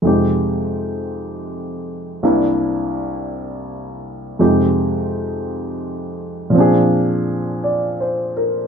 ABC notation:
X:1
M:4/4
L:1/8
Q:"Swing" 1/4=55
K:Fdor
V:1 name="Grand piano"
z8 | z6 (3d c B |]
V:2 name="Grand piano"
[F,,C,A,EG]4 [C,,C,B,D=E]4 | [F,,C,A,EG]4 [B,,F,CDA]4 |]